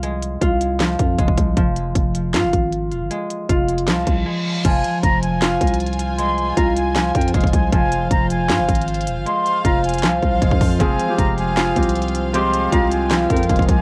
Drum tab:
CC |------------------------------------------------------------------------------------------------|------------------------------------------------------------------------------------------------|------------------------------------------------------------------------------------------------|x-----------------------------------------------------------------------------------------------|
HH |x-----------x-----------x-----------x-----------x-----------x-----------x-----------x-----------|x-----------x-----------x-----------x-----------x-----------x-----------x-----------x-----------|x-----------x-----------x-----------x-----x-----x-----------x-----------------------------------|x-----------x-----------x-----------x-----------x-----------x---x---x---x---x---x---x-----------|
CP |------------------------------------------------x-----------------------------------------------|------------------------------------------------x-----------------------------------------------|------------------------------------------------x-----------------------------------------------|------------------------------------------------x-----------------------------------------------|
SD |------------------------------------------------o-----------------------------------------------|------------------------------------------------o-----------------------------------------------|------------------------------------------------o-----------------------------------------------|------------------------------------------------o-----------------------------------------------|
BD |------------------------o-----------------------------------o-----------o-----o-----o-----------|o-----------------------o-----------------------------------o-----------------------------------|------------------------o-----------------------------------o-----------------------------------|o-----------------------o-----------------------------------o-----------------------------------|

CC |------------------------------------------------------------------------------------------------|------------------------------------------------------------------------------------------------|------------------------------------------------------------------------------------------------|------------------------------------------------------------------------------------------------|
HH |x-----------x-----------x-----------x-----------x-----------x---x---x---x---x---x---x-----------|x-----------x-----------x-----------x-----------x-----------x---x---x---x---x---x---x-----------|x-----------x-----------x-----------x--x--x--x--x-----------x-----------x-----------o-----------|x-----------x-----------x-----------x-----------x-----------x---x---x---x---x---x---x-----------|
CP |------------------------------------------------x-----------------------------------------------|------------------------------------------------x-----------------------------------------------|------------------------------------------------x-----------------------------------------------|------------------------------------------------x-----------------------------------------------|
SD |------------------------------------------------o-----------------------------------------------|------------------------------------------------o-----------------------------------------------|------------------------------------------------o-----------------------------------------------|------------------------------------------------o-----------------------------------------------|
BD |------------------------o-----------------------------------o-----------o-----o-----o-----------|o-----------------------o-----------------------------------o-----------------------------------|------------------------o-----------------------------------o-----------o-----o-----o-----------|o-----------------------o-----------------------------------o-----------------------------------|

CC |------------------------------------------------------------------------------------------------|
HH |x-----------x-----------x-----------x-----------x-----------x---x---x---x---x---x---x-----------|
CP |------------------------------------------------x-----------------------------------------------|
SD |------------------------------------------------o-----------------------------------------------|
BD |------------------------o-----------------------------------o-----------o-----o-----o-----------|